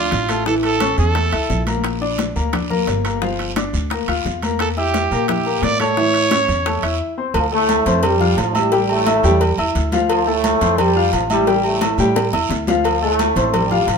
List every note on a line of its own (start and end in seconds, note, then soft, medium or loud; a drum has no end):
0.00 0.23 D4 medium
0.00 0.43 F4 loud
0.00 0.23 D5 medium
0.00 0.23 D6 medium
0.11 0.92 A1 loud
0.11 high bongo soft
0.11 low bongo medium
0.11 high conga soft
0.11 high timbale medium
0.11 short guiro medium
0.29 0.43 A3 medium
0.29 0.44 A4 medium
0.29 0.44 A5 medium
0.29 high bongo soft
0.29 high timbale medium
0.29 short guiro medium
0.46 0.75 E3 medium
0.46 0.75 E4 medium
0.46 0.55 A4 medium
0.46 0.75 E5 medium
0.46 high bongo medium
0.46 high conga soft
0.46 long guiro medium
0.63 0.96 A4 loud
0.63 high bongo soft
0.63 high conga soft
0.63 high timbale medium
0.80 1.09 C#4 medium
0.80 1.09 C#5 medium
0.80 1.09 C#6 medium
0.80 high bongo medium
0.80 high conga loud
0.80 high timbale loud
0.80 short guiro medium
0.98 1.30 E2 loud
0.98 1.63 A4 medium
0.98 high conga soft
0.98 short guiro medium
1.15 1.29 A3 medium
1.15 1.29 A4 medium
1.15 1.30 A5 medium
1.15 high bongo medium
1.15 high conga soft
1.15 high timbale medium
1.15 long guiro medium
1.32 1.49 C#2 medium
1.32 1.61 E4 medium
1.32 1.61 E5 medium
1.32 1.61 E6 medium
1.32 high bongo soft
1.32 high conga soft
1.32 high timbale medium
1.50 2.30 A#1 medium
1.50 high bongo soft
1.50 low bongo medium
1.50 high conga soft
1.50 short guiro medium
1.67 1.95 A#3 medium
1.67 1.95 A#4 medium
1.67 1.96 A#5 medium
1.67 high bongo soft
1.67 high conga medium
1.67 high timbale medium
1.67 short guiro medium
1.84 high bongo medium
1.84 high timbale medium
1.84 long guiro medium
2.01 2.30 D4 medium
2.01 2.30 D5 medium
2.01 2.30 D6 medium
2.01 high bongo soft
2.01 high conga soft
2.18 high bongo medium
2.18 high conga loud
2.18 high timbale medium
2.18 short guiro medium
2.36 2.84 D2 medium
2.36 2.50 A#3 medium
2.36 2.50 A#4 medium
2.36 2.50 A#5 medium
2.36 short guiro medium
2.53 2.67 D4 medium
2.53 2.67 D5 medium
2.53 2.68 D6 medium
2.53 high bongo medium
2.53 high conga soft
2.53 low conga medium
2.53 high timbale loud
2.53 long guiro medium
2.70 2.98 A#3 medium
2.70 2.98 A#4 medium
2.70 2.99 A#5 medium
2.70 high bongo soft
2.70 high conga soft
2.70 low conga medium
2.87 3.68 G1 medium
2.87 high bongo soft
2.87 low bongo medium
2.87 high timbale medium
2.87 low timbale medium
2.87 short guiro medium
3.04 3.19 A#3 medium
3.04 3.19 A#4 medium
3.04 3.19 A#5 medium
3.04 high bongo soft
3.04 high timbale medium
3.04 short guiro medium
3.22 3.50 F3 medium
3.22 3.50 F4 medium
3.22 3.50 F5 medium
3.22 high bongo medium
3.22 high conga soft
3.22 long guiro medium
3.39 high bongo soft
3.39 high conga soft
3.39 high timbale medium
3.56 3.85 D4 medium
3.56 3.85 D5 medium
3.56 3.85 D6 medium
3.56 high bongo medium
3.56 high conga loud
3.56 high timbale medium
3.56 short guiro medium
3.73 4.05 D2 loud
3.73 high conga soft
3.73 short guiro medium
3.90 4.05 A#3 medium
3.90 4.05 A#4 medium
3.90 4.05 A#5 medium
3.90 high bongo medium
3.90 high conga soft
3.90 high timbale medium
3.90 long guiro medium
4.08 4.24 D2 medium
4.08 4.36 F4 medium
4.08 4.36 F5 medium
4.08 4.37 F6 medium
4.08 high bongo soft
4.08 high conga soft
4.08 high timbale loud
4.25 5.05 E2 loud
4.25 high bongo soft
4.25 low bongo medium
4.25 high conga soft
4.25 short guiro medium
4.42 4.71 A#3 medium
4.42 4.71 A#4 medium
4.42 4.71 A#5 medium
4.42 high bongo soft
4.42 high conga medium
4.42 high timbale medium
4.42 short guiro medium
4.59 4.68 A4 medium
4.59 high bongo medium
4.59 high conga soft
4.59 high timbale loud
4.59 long guiro medium
4.77 5.05 E4 medium
4.77 5.25 G4 loud
4.77 5.05 E5 medium
4.77 5.06 E6 medium
4.77 high bongo soft
4.77 high conga soft
4.94 high bongo medium
4.94 high conga loud
4.94 high timbale medium
4.94 short guiro medium
5.11 5.59 A#2 loud
5.11 5.26 A#3 medium
5.11 5.26 A#4 medium
5.11 5.26 A#5 medium
5.11 short guiro medium
5.28 5.43 E4 medium
5.28 5.65 G4 medium
5.28 5.43 E5 medium
5.28 5.43 E6 medium
5.28 high bongo medium
5.28 high conga soft
5.28 low conga medium
5.28 high timbale loud
5.28 long guiro medium
5.46 5.74 A#3 medium
5.46 5.74 A#4 medium
5.46 5.74 A#5 medium
5.46 high bongo soft
5.46 high conga soft
5.62 6.43 A2 medium
5.62 5.80 D5 loud
5.62 high bongo soft
5.62 low bongo medium
5.62 high conga soft
5.62 high timbale medium
5.62 low timbale medium
5.62 short guiro medium
5.80 5.94 A3 medium
5.80 5.94 A4 medium
5.80 6.97 C#5 loud
5.80 5.95 A5 medium
5.80 high bongo soft
5.80 high conga medium
5.80 high timbale medium
5.80 short guiro medium
5.97 6.26 E3 medium
5.97 6.26 E4 medium
5.97 6.26 E5 medium
5.97 high bongo medium
5.97 high conga soft
5.97 long guiro medium
6.14 high bongo soft
6.14 high conga soft
6.14 high timbale medium
6.31 6.60 C#4 medium
6.31 6.60 C#5 medium
6.31 6.60 C#6 medium
6.31 high bongo medium
6.31 high conga loud
6.31 high timbale loud
6.31 short guiro medium
6.48 6.80 E2 loud
6.48 high conga soft
6.48 short guiro medium
6.66 6.80 A3 medium
6.66 6.80 A4 medium
6.66 6.81 A5 medium
6.66 high bongo medium
6.66 high conga soft
6.66 high timbale medium
6.66 long guiro medium
6.83 6.99 E2 medium
6.83 7.11 E4 medium
6.83 7.11 E5 medium
6.83 7.12 E6 medium
6.83 high bongo soft
6.83 high conga soft
6.83 high timbale loud
7.17 7.32 C4 medium
7.17 7.32 C5 medium
7.17 7.32 C6 medium
7.34 7.82 D2 loud
7.34 7.43 F3 loud
7.34 7.43 F4 medium
7.34 cowbell loud
7.34 high conga soft
7.34 low agogo loud
7.34 long guiro medium
7.51 8.01 A2 medium
7.51 7.80 A3 medium
7.51 8.01 A3 loud
7.51 7.80 A4 medium
7.51 7.80 A5 medium
7.51 high conga soft
7.69 cowbell medium
7.69 high conga loud
7.69 low agogo medium
7.69 short guiro medium
7.86 8.34 F2 loud
7.86 8.14 C4 medium
7.86 8.15 C5 medium
7.86 8.15 C6 medium
7.86 cowbell medium
7.86 short guiro medium
8.03 8.38 G2 medium
8.03 8.38 G3 loud
8.03 cowbell loud
8.03 high conga soft
8.03 low conga medium
8.03 low agogo loud
8.03 long guiro medium
8.20 8.49 F4 medium
8.20 8.49 F5 medium
8.20 8.49 F6 medium
8.20 high conga soft
8.20 low conga medium
8.37 9.17 A1 loud
8.37 8.55 F3 medium
8.37 8.56 F4 medium
8.37 cowbell medium
8.37 low timbale medium
8.37 low agogo medium
8.37 short guiro medium
8.55 8.90 G2 medium
8.55 8.90 G3 loud
8.55 8.69 E4 medium
8.55 8.69 E5 medium
8.55 8.69 E6 medium
8.55 high conga medium
8.55 low agogo loud
8.55 short guiro medium
8.72 9.00 G3 medium
8.72 9.01 G4 medium
8.72 9.01 G5 medium
8.72 cowbell loud
8.72 long guiro medium
8.89 9.41 A2 medium
8.89 9.41 A3 loud
8.89 high conga soft
8.89 low agogo medium
9.06 9.21 E4 medium
9.06 9.21 E5 medium
9.06 9.21 E6 medium
9.06 cowbell medium
9.06 high conga loud
9.06 low agogo loud
9.06 short guiro medium
9.23 9.55 E2 loud
9.23 9.52 G3 medium
9.23 9.52 G4 medium
9.23 9.52 G5 loud
9.23 high conga soft
9.23 short guiro medium
9.41 cowbell loud
9.41 high conga soft
9.41 low agogo medium
9.41 long guiro medium
9.58 9.74 E2 medium
9.58 9.87 E4 medium
9.58 9.87 E5 medium
9.58 9.87 E6 medium
9.58 high conga soft
9.58 low agogo loud
9.75 10.55 D2 loud
9.75 cowbell medium
9.75 high conga soft
9.75 short guiro medium
9.92 10.21 F3 medium
9.92 10.21 F4 medium
9.92 10.21 F5 loud
9.92 cowbell medium
9.92 high conga medium
9.92 short guiro medium
10.09 10.26 F3 loud
10.09 10.26 F4 medium
10.09 cowbell loud
10.09 low agogo loud
10.09 long guiro medium
10.27 10.79 A2 loud
10.27 10.55 A3 medium
10.27 10.79 A3 loud
10.27 10.55 A4 medium
10.27 10.55 A5 medium
10.27 high conga soft
10.44 cowbell medium
10.44 high conga loud
10.44 low agogo medium
10.44 short guiro medium
10.61 11.09 F2 loud
10.61 10.89 C4 medium
10.61 10.90 C5 medium
10.61 10.90 C6 medium
10.61 cowbell medium
10.61 short guiro medium
10.78 11.13 G2 medium
10.78 11.13 G3 loud
10.78 cowbell loud
10.78 high conga soft
10.78 low conga medium
10.78 low agogo loud
10.78 long guiro medium
10.95 11.24 F4 medium
10.95 11.24 F5 medium
10.95 11.24 F6 medium
10.95 high conga soft
11.12 11.93 A1 loud
11.12 11.21 F3 medium
11.12 11.22 F4 medium
11.12 cowbell medium
11.12 high conga soft
11.12 low agogo medium
11.12 short guiro medium
11.30 11.63 G2 medium
11.30 11.62 G3 loud
11.30 11.44 E4 medium
11.30 11.44 E5 medium
11.30 11.45 E6 medium
11.30 high conga medium
11.30 low agogo loud
11.30 short guiro medium
11.47 11.75 G3 medium
11.47 11.76 G4 medium
11.47 11.76 G5 medium
11.47 cowbell loud
11.47 high conga soft
11.47 long guiro medium
11.64 12.13 A2 medium
11.64 12.13 A3 loud
11.64 high conga soft
11.64 low agogo medium
11.81 11.96 E4 medium
11.81 11.96 E5 medium
11.81 11.96 E6 medium
11.81 cowbell medium
11.81 high bongo medium
11.81 high conga loud
11.81 low agogo loud
11.81 short guiro medium
11.98 12.30 A2 loud
11.98 12.27 G3 medium
11.98 12.27 G4 medium
11.98 12.27 G5 loud
11.98 high conga soft
11.98 short guiro medium
12.16 cowbell loud
12.16 low bongo loud
12.16 high conga soft
12.16 low agogo medium
12.16 long guiro medium
12.32 12.49 E2 medium
12.32 12.61 E4 medium
12.32 12.61 E5 medium
12.32 12.62 E6 medium
12.32 low bongo medium
12.32 high conga soft
12.32 low agogo loud
12.49 13.30 D2 medium
12.49 cowbell medium
12.49 low bongo medium
12.49 high conga soft
12.49 short guiro medium
12.67 12.96 F3 medium
12.67 12.96 F4 medium
12.67 12.96 F5 loud
12.67 cowbell medium
12.67 low bongo medium
12.67 high conga medium
12.67 short guiro medium
12.84 13.01 F3 loud
12.84 13.01 F4 medium
12.84 cowbell loud
12.84 high conga soft
12.84 low agogo loud
12.84 long guiro medium
13.02 13.51 A2 medium
13.02 13.30 A3 medium
13.02 13.50 A3 loud
13.02 13.30 A4 medium
13.02 13.31 A5 medium
13.02 high conga soft
13.19 cowbell medium
13.19 high conga loud
13.19 low agogo medium
13.19 short guiro medium
13.36 13.84 A1 loud
13.36 13.65 C4 medium
13.36 13.65 C5 medium
13.36 13.65 C6 medium
13.36 cowbell medium
13.36 short guiro medium
13.54 13.89 G2 medium
13.54 13.89 G3 loud
13.54 cowbell loud
13.54 high conga soft
13.54 low conga medium
13.54 low agogo loud
13.54 long guiro medium
13.71 13.98 F4 medium
13.71 13.98 F5 medium
13.71 13.98 F6 medium
13.71 high conga soft
13.71 low conga medium
13.87 13.98 A1 loud
13.87 13.98 F3 medium
13.87 13.98 F4 medium
13.87 cowbell medium
13.87 high conga soft
13.87 low agogo medium
13.87 short guiro medium